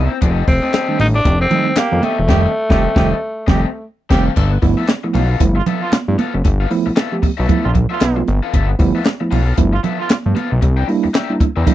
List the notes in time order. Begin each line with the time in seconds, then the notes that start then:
Already playing: C4 E4 A#4 E5
0.11 A#3 E4, muted overdriven electric guitar stroke
0.21 F1 C4 G4 A4 D#5, kick, closed hi-hat, muted conga
0.48 F1 C4, muted overdriven electric guitar stroke, kick, open hi-hat
0.62 A3 C4 G4 A4 D#5
0.72 C4 G4 A4 D#5, snare, clap, closed hi-hat, high conga
0.88 D#3 G3 A3 D4
0.98 A1 D#4, muted overdriven electric guitar stroke, open hi-hat, muted conga
1.14 D4, muted overdriven electric guitar stroke
1.25 F1 G4, muted overdriven electric guitar stroke, kick, closed hi-hat, muted conga
1.40 A3 C4 G4, muted overdriven electric guitar stroke
1.50 D#3 G3 A3 C4 D#4 G4 A4 D#5, closed hi-hat, low conga
1.67 muted overdriven electric guitar stroke
1.76 A#3 G4, muted overdriven electric guitar stroke, snare, clap, closed hi-hat, high conga
1.91 F2 D#3 G3 A3 B3
2.02 A3 C4 G4 A4 D#5, closed hi-hat, high conga
2.17 E1 A3 C4, muted overdriven electric guitar stroke
2.28 F1 D#3 G3 A3 C4 G4 A4 D#5, kick, snare, crash
2.69 F1 D#3 G3 A3 C4 G4 A4 D#5, kick, snare
2.95 F1 D#3 G3 A3 C4 G4 A4 D#5, kick, snare
3.47 F1 D#3 G3 A3 C4 G4 A4 D#5, kick, snare
4.10 F1 D#3 G3 A3 C4 G4 A4 F5, kick, snare, crash
4.36 G1 B3 F4 A4 E5, kick, crash, muted conga
4.52 muted overdriven electric guitar stroke
4.62 G1 F3 A3 B3 E4, muted overdriven electric guitar stroke, kick, open hi-hat
4.78 B3 F4 A4 E5
4.88 muted overdriven electric guitar stroke, snare, clap, closed hi-hat, high conga
5.04 F3 A3 B3 E4, muted overdriven electric guitar stroke
5.14 B1 B3 F4 A4 F5, open hi-hat, muted conga
5.30 B3 F4 A4 F5
5.40 G1 F3 A3 B3 E4, muted overdriven electric guitar stroke, kick, closed hi-hat, muted conga
5.55 F4, muted overdriven electric guitar stroke
5.66 B3 E4 F4 A4 E5, closed hi-hat, low conga
5.82 B3 F4 A4 F5
5.92 muted overdriven electric guitar stroke, snare, clap, closed hi-hat, high conga
6.08 G2 F3 A3 B3 E4
6.18 B3 F4 A4 F5, closed hi-hat, high conga
6.34 F#1 B3 D4, muted overdriven electric guitar stroke
6.45 G1, muted overdriven electric guitar stroke, kick, closed hi-hat, muted conga
6.60 B3 F4 A4 F5
6.71 F3 A3 B3 E4, muted overdriven electric guitar stroke, open hi-hat
6.86 B1, muted overdriven electric guitar stroke
6.96 B3 F4 A4 E5, snare, clap, closed hi-hat, high conga
7.12 F3 A3 B3 G4
7.23 B1, muted overdriven electric guitar stroke, kick, open hi-hat, muted conga
7.37 B1 B3 F4 A4 E5
7.48 A#1 F3 A3 B3 E4 F4 A4 E5, kick, closed hi-hat, low conga
7.65 A#1 F4
7.74 muted overdriven electric guitar stroke, kick, closed hi-hat, low conga
7.90 B3 F4 A4 E5
8.01 B1, muted overdriven electric guitar stroke, snare, clap, closed hi-hat, high conga
8.16 F3 A3 B3 F4, muted overdriven electric guitar stroke
8.28 G1, closed hi-hat, high conga
8.43 B3 E4 F4 A4 F5
8.53 G1 B3 F4 A4 E5, kick, closed hi-hat, muted conga
8.69 muted overdriven electric guitar stroke
8.79 G1 F3 A3 B3 E4, muted overdriven electric guitar stroke, kick, open hi-hat
8.95 B3 F4 A4 E5
9.05 muted overdriven electric guitar stroke, snare, clap, closed hi-hat, high conga
9.20 F3 A3 B3 E4, muted overdriven electric guitar stroke
9.31 B1 B3 F4 A4 F5, open hi-hat, muted conga
9.46 B3 F4 A4 F5
9.57 G1 F3 A3 B3 E4, muted overdriven electric guitar stroke, kick, closed hi-hat, muted conga
9.73 F4, muted overdriven electric guitar stroke
9.83 B3 E4 F4 A4 E5, closed hi-hat, low conga
9.99 B3 F4 A4 F5
10.10 muted overdriven electric guitar stroke, snare, clap, closed hi-hat, high conga
10.26 G2 F3 A3 B3 G4
10.35 B3 F4 A4 F5, closed hi-hat, high conga
10.51 B1 B3 E4, muted overdriven electric guitar stroke
10.61 C2, muted overdriven electric guitar stroke, kick, closed hi-hat, muted conga
10.77 D4 G4 A#4 G5
10.87 G3 A#3 D4 E4, muted overdriven electric guitar stroke, open hi-hat
11.03 E2, muted overdriven electric guitar stroke
11.14 D4 G4 A#4 E5, snare, clap, closed hi-hat, high conga
11.30 G3 A#3 D4 E4
11.40 E2, muted overdriven electric guitar stroke, kick, closed hi-hat, muted conga
11.56 E2 D4 G4 A#4 E5
11.66 D2 G3 A#3 D4 E4 G4 A#4 E5, kick, closed hi-hat, muted conga, low conga